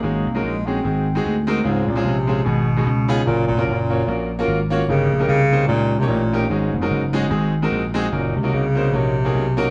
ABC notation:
X:1
M:4/4
L:1/16
Q:"Swing" 1/4=148
K:Abmix
V:1 name="Grand piano"
[A,DEGA]2 z [A,DEGB]2 z [A,DEGA] z [A,CEGA]2 z [A,CEGA]2 z [A,CEGB] z | [A,CDFA]2 z [A,CDFA]2 z [A,CDFA] z [A,_CEGA]2 z [A,CEGA] z2 [CDEFA] z | [B,DFGB]2 z [B,DFGB]2 z [B,DFGd] z [B,DFGB]2 z [B,DFGB]2 z [B,DFGd] z | [B,DE=GB]2 z [B,DEGB]2 z [B,DEGc] z [B,DEGd]2 z [B,DEGd]2 z [B,DEGB] z |
[A,DEGA]2 z [A,DEGB]2 z [A,DEGA] z [A,CEGA]2 z [A,CEGB]2 z [A,CEGA] z | [B,DEGB]2 z [B,DEGB]2 z [B,DEGc] z [B,DEGd]2 z [B,DEGA]2 z [B,DEGB] z |]
V:2 name="Grand piano" clef=bass
A,,6 z2 A,,6 z2 | D,6 z2 A,,4 D,4 | z16 | =G,,6 z8 z2 |
A,,6 z2 A,,6 z2 | z16 |]
V:3 name="Bass clarinet" clef=bass
B,4 A,2 C8 z2 | A,,2 B,,2 C,4 _C,8 | B,,2 B,,2 B,,8 z4 | D,4 D,4 B,,3 C, B,,4 |
A,,12 z4 | B,,2 C,2 D,4 C,8 |]
V:4 name="Slap bass" clef=bass
A,,,2 C,,2 B,,,4 A,,,4 =D,,4 | D,,2 C,,2 B,,,4 A,,,4 D,,4 | G,,,2 F,,,2 G,,,4 B,,,4 A,,,4 | =G,,,2 B,,,2 C,,4 D,,4 =A,,,4 |
A,,,2 F,,,2 G,,,4 A,,,4 B,,,4 | G,,,2 D,,2 C,,4 B,,,4 _C,,4 |]